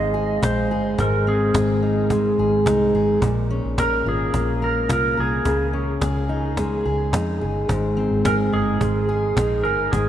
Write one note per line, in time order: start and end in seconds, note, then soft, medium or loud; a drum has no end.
0.00 0.39 G#1 loud
0.00 0.98 G#2 medium
0.00 2.10 G#3 medium
0.00 1.26 C4 medium
0.00 0.41 D#4 medium
0.00 0.13 G#4 medium
0.00 0.45 D#5 loud
0.14 0.70 G#4 medium
0.43 0.70 A#1 medium
0.43 1.81 D#4 medium
0.43 0.95 C5 medium
0.43 cajon bass loud
0.43 cajon slap loud
0.70 0.96 G1 medium
0.70 1.54 G#4 medium
0.98 1.50 G#1 loud
0.98 3.22 G#2 medium
0.98 1.28 A#4 medium
0.98 cajon bass loud
1.27 3.28 C4 medium
1.27 1.79 G#4 medium
1.54 2.34 G#1 loud
1.54 2.38 G#4 medium
1.54 cajon bass loud
1.54 cajon slap loud
1.83 2.66 D#4 medium
2.10 3.28 G#3 medium
2.10 cajon bass loud
2.38 2.64 G#1 medium
2.38 2.94 G#4 medium
2.66 2.92 C2 medium
2.66 3.28 D#4 medium
2.66 cajon bass loud
2.66 cajon slap loud
2.94 3.20 G#1 medium
2.94 3.28 G#4 medium
3.22 3.61 A#1 loud
3.22 5.46 A#2 medium
3.22 cajon bass loud
3.51 5.73 C#4 medium
3.64 4.03 A#1 medium
3.78 4.61 A#4 medium
3.78 4.07 A#4 loud
3.78 cajon bass loud
3.78 cajon slap loud
4.06 4.31 G#1 medium
4.06 4.88 F4 medium
4.06 4.65 G#4 loud
4.34 4.85 A#1 loud
4.34 5.51 A#3 medium
4.34 cajon bass loud
4.62 5.16 A#4 medium
4.62 4.92 A#4 loud
4.89 5.15 C2 medium
4.89 5.51 F4 medium
4.89 cajon bass loud
4.89 cajon slap loud
4.93 5.20 A#4 loud
5.17 5.43 C2 medium
5.17 7.10 G#4 loud
5.17 5.51 A#4 medium
5.45 5.97 C#2 loud
5.45 7.69 C#3 medium
5.45 cajon bass loud
5.73 7.74 C#4 medium
6.01 6.81 C#2 loud
6.01 6.85 G#4 medium
6.01 cajon bass loud
6.01 cajon slap loud
6.29 7.13 D#4 medium
6.57 8.80 G#3 medium
6.57 cajon bass loud
6.57 cajon slap medium
6.85 7.11 C#2 loud
6.85 7.41 G#4 medium
7.13 7.43 F2 loud
7.13 8.52 D#4 medium
7.13 cajon bass loud
7.13 cajon slap loud
7.41 7.67 G1 medium
7.41 8.24 G#4 medium
7.69 8.08 G#1 loud
7.69 9.92 G#2 medium
7.69 cajon bass loud
7.97 10.09 C4 medium
8.11 8.50 G#1 loud
8.25 9.08 G#4 medium
8.25 8.34 A#4 loud
8.25 cajon bass loud
8.25 cajon slap loud
8.53 8.79 G1 medium
8.53 9.36 D#4 medium
8.53 9.68 G#4 medium
8.81 9.33 G#1 loud
8.81 10.09 G#3 medium
8.81 cajon bass loud
9.09 9.64 G#4 medium
9.37 9.66 A#1 loud
9.37 10.09 D#4 medium
9.37 cajon bass loud
9.37 cajon slap loud
9.63 9.91 G1 medium
9.63 10.09 G#4 medium
9.63 9.93 A#4 loud
9.92 10.09 G#1 loud
9.92 10.09 G#2 medium
9.92 10.09 G#4 medium
9.92 cajon bass loud